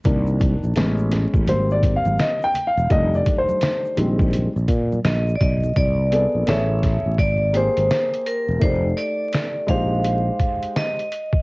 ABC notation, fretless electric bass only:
X:1
M:4/4
L:1/16
Q:"Swing 16ths" 1/4=84
K:Bbmix
V:1 name="Fretless electric bass" clef=bass
C,,3 B,,, =A,,,3 A,,, _A,,,3 A,,, z3 =E,,, | F,,,2 z4 B,,,3 B,,, B,,2 B,,,2 =B,,,2 | C,,3 B,,, =A,,,3 A,,, _A,,,3 A,,, z3 =E,,, | F,,,2 z4 B,,,4 z6 |]